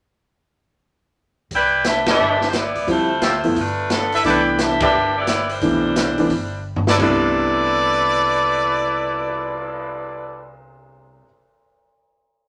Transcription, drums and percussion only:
1.51 kick, open hi-hat
1.84 snare, closed hi-hat
2.06 snare, ride
2.41 snare
2.53 snare, closed hi-hat
2.75 open hi-hat
2.88 kick, open hi-hat
3.22 snare, closed hi-hat
3.44 open hi-hat
3.56 kick, open hi-hat
3.90 snare, closed hi-hat
4.12 open hi-hat
4.24 kick, open hi-hat
4.59 snare, closed hi-hat
4.80 kick, ride
5.27 snare, closed hi-hat
5.49 open hi-hat
5.61 kick, open hi-hat
5.96 snare, closed hi-hat
6.18 open hi-hat
6.30 kick, open hi-hat
6.76 floor tom
6.87 snare
7.00 kick, crash
7.22 cymbal swell

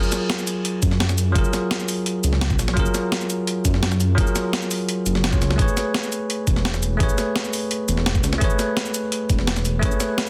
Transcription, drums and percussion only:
0.03 shaker
0.12 snare, closed hi-hat, shaker
0.30 snare, closed hi-hat
0.39 shaker
0.47 closed hi-hat, shaker
0.65 closed hi-hat
0.83 kick, closed hi-hat, shaker
0.91 snare
1.00 snare, closed hi-hat
1.09 snare, shaker
1.18 closed hi-hat, shaker
1.35 kick, closed hi-hat
1.45 shaker
1.53 snare, closed hi-hat, shaker
1.71 snare, closed hi-hat
1.80 shaker
1.88 open hi-hat, shaker
2.06 closed hi-hat
2.24 closed hi-hat, shaker
2.33 snare
2.41 snare, closed hi-hat
2.50 kick, shaker
2.59 snare, closed hi-hat, shaker
2.68 snare
2.77 kick, closed hi-hat
2.86 shaker
2.94 snare, closed hi-hat, shaker
3.12 snare, closed hi-hat
3.21 shaker
3.30 closed hi-hat, shaker
3.47 closed hi-hat
3.65 kick, closed hi-hat, shaker
3.74 snare
3.83 snare, closed hi-hat
3.92 snare, shaker
4.00 closed hi-hat, shaker
4.18 kick, closed hi-hat
4.27 shaker
4.36 snare, closed hi-hat, shaker
4.53 snare, closed hi-hat
4.62 shaker
4.71 open hi-hat, shaker
4.89 closed hi-hat
5.06 closed hi-hat, shaker
5.15 snare
5.24 snare, closed hi-hat
5.33 kick, shaker
5.42 snare, closed hi-hat, shaker
5.50 snare
5.59 kick, closed hi-hat
5.68 shaker
5.77 snare, closed hi-hat, shaker
5.94 snare, closed hi-hat
6.03 shaker
6.12 closed hi-hat, shaker
6.30 closed hi-hat
6.47 kick, closed hi-hat, shaker
6.56 snare
6.65 snare, closed hi-hat
6.74 snare, shaker
6.83 closed hi-hat, shaker
7.00 kick, closed hi-hat
7.09 shaker
7.18 snare, closed hi-hat, shaker
7.36 snare, closed hi-hat
7.45 shaker
7.53 open hi-hat, shaker
7.71 closed hi-hat
7.89 closed hi-hat, shaker
7.97 snare
8.06 snare, closed hi-hat
8.15 kick, shaker
8.24 snare, closed hi-hat, shaker
8.33 snare
8.41 kick, closed hi-hat
8.50 shaker
8.59 snare, closed hi-hat, shaker
8.77 snare, closed hi-hat
8.86 shaker
8.94 closed hi-hat, shaker
9.12 closed hi-hat
9.30 kick, closed hi-hat, shaker
9.39 snare
9.47 snare, closed hi-hat
9.56 snare, shaker
9.65 closed hi-hat, shaker
9.83 kick, closed hi-hat
9.92 shaker
10.00 snare, closed hi-hat, shaker
10.18 snare, closed hi-hat

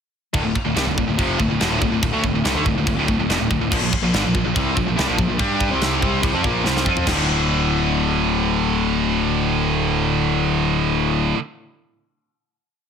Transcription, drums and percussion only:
0.34 kick, china
0.55 kick
0.77 snare, china
0.98 kick
1.19 kick, china
1.40 kick
1.61 snare, china
1.82 kick
2.03 kick, china
2.24 kick
2.45 snare, china
2.66 kick
2.87 kick, china
3.08 kick
3.30 snare, china
3.51 kick
3.72 kick, china, crash
3.93 kick
4.14 snare, china
4.35 kick
4.56 kick, china
4.77 kick
4.99 snare, china
5.19 kick
5.39 kick, china
5.61 kick
5.81 snare, china
6.02 kick
6.23 kick, china
6.44 kick
6.66 snare
6.77 snare
6.86 kick
6.97 floor tom
7.07 kick, snare, crash

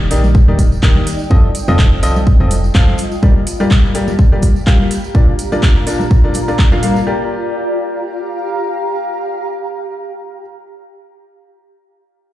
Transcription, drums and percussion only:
0.11 open hi-hat, tambourine
0.24 tambourine, high conga
0.35 kick, tambourine
0.59 kick, open hi-hat, tambourine, high conga
0.72 tambourine
0.83 kick, clap, tambourine
0.96 high conga
1.07 open hi-hat, tambourine
1.19 tambourine
1.30 kick, tambourine, high conga
1.55 open hi-hat, tambourine
1.68 tambourine, high conga
1.79 kick, clap, tambourine
2.03 open hi-hat, tambourine
2.16 tambourine, high conga
2.27 kick, tambourine
2.50 open hi-hat, tambourine, high conga
2.64 tambourine
2.75 kick, clap, tambourine
2.88 high conga
2.98 open hi-hat, tambourine
3.12 tambourine
3.23 kick, tambourine, high conga
3.47 open hi-hat, tambourine
3.60 tambourine, high conga
3.71 kick, clap, tambourine
3.95 open hi-hat, tambourine
4.08 tambourine, high conga
4.19 kick, tambourine
4.42 kick, open hi-hat, tambourine, high conga
4.56 tambourine
4.67 kick, clap, tambourine
4.80 high conga
4.91 open hi-hat, tambourine
5.04 tambourine
5.15 kick, tambourine, high conga
5.39 open hi-hat, tambourine
5.52 tambourine, high conga
5.62 kick, clap, tambourine
5.87 open hi-hat, tambourine
6.00 tambourine, high conga
6.11 kick, tambourine
6.34 open hi-hat, tambourine, high conga
6.48 tambourine
6.58 kick, clap, tambourine
6.72 high conga
6.83 open hi-hat, tambourine
6.96 tambourine

